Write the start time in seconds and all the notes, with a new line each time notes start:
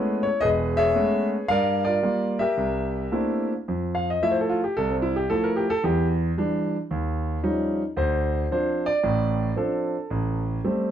Already playing: G#3 A3 B3 C#4 E4 G#4 B4
0.23 C#5
0.41 E1 G#4 B4 D#5
0.77 G#4 C#5 E5
0.96 G#3 A3 B3 C#4
1.48 G2 A#4 D5 F5
1.85 F4 A#4 D5
2.03 G3 A#3 F4
2.39 G4 A#4 E5
2.57 C2
3.12 A3 A#3 C4 D4 E4
3.68 F2
3.95 F5
4.10 D#5
4.22 F3 A3 E4 E5
4.31 C5
4.41 A4
4.49 F4
4.64 G4
4.77 C2 A4
4.90 C4
5.02 E4
5.16 G4
5.30 F3 A3 E4 A4
5.44 A#4
5.56 G4
5.70 A4
5.84 E2 E3 G4
6.38 E3 G3 D4
6.91 D#2
7.43 F3 G3 C#4 D#4
7.97 D2 C5
8.51 F3 C4 D4 C5
8.86 D5
9.03 A1 A2
9.56 F3 C4 D4 A4
10.10 A1
10.64 G3 A3 C4